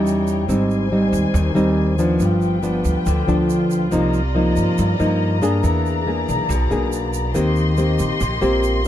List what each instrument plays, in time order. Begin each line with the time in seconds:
Already playing: upright bass E2, nylon-string guitar E3 G3 C#4 D#4, string section D#4 C#5 G5
0.07 shaker
0.28 shaker
0.48 upright bass G#1, nylon-string guitar G#2 G3 C4 D#4, string section G3 C5 G#5, shaker
0.71 shaker
0.92 nylon-string guitar G3 C4 D#4
1.13 upright bass D#2, shaker
1.34 upright bass D#2, nylon-string guitar D#3, shaker
1.55 upright bass D#2, nylon-string guitar G3 C4 D#4, shaker
1.99 nylon-string guitar F3 B3 D4, shaker
2.20 upright bass G1, nylon-string guitar G2, string section F4 B4 G5, shaker
2.41 shaker
2.63 nylon-string guitar F3 B3 D4, shaker
2.85 upright bass D2, shaker
3.06 upright bass D2, nylon-string guitar D3, shaker
3.28 upright bass D2, nylon-string guitar F3 B3 D4, shaker
3.50 shaker
3.71 shaker
3.91 upright bass C2, nylon-string guitar C3 F3 A#3 D#4, string section D5 D#5 A#5, shaker
4.14 shaker
4.35 nylon-string guitar F3 A#3 D#4
4.56 upright bass G2, shaker
4.78 upright bass G2, nylon-string guitar G2, shaker
4.99 upright bass G2, nylon-string guitar F3 A#3 D#4, shaker
5.42 nylon-string guitar A#3 D4 G#4, shaker
5.63 upright bass E2, nylon-string guitar E3, string section G#4 D5, shaker
5.86 shaker
6.07 nylon-string guitar A#3 D4 G#4
6.29 upright bass B1, shaker
6.49 upright bass B1, nylon-string guitar B2, shaker
6.71 upright bass B1, nylon-string guitar A#3 D4 G#4, shaker
6.92 shaker
7.14 shaker
7.34 upright bass D#2, nylon-string guitar D#3 A#3 C4 G4, string section G4 D#5 C6, shaker
7.56 shaker
7.77 nylon-string guitar A#3 C4 G4, shaker
7.99 upright bass A#1, shaker
8.21 upright bass A#1, nylon-string guitar A#2, shaker
8.41 upright bass A#1, nylon-string guitar A#3 C4 G4, shaker
8.63 shaker